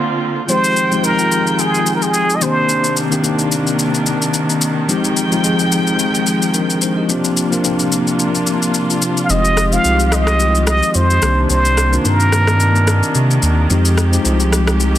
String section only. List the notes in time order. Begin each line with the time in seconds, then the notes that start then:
Already playing: D3 A#3 C4 F4
0.49 D#3 G#3 F4 G5
2.41 C3 D#3 A#3 D4
4.89 F3 G#3 G5
7.09 C3 A#3 D4 F4
9.30 D#3 G#3 G4
11.22 C3 D#3 A#3 D4
13.70 F3 G#3 G4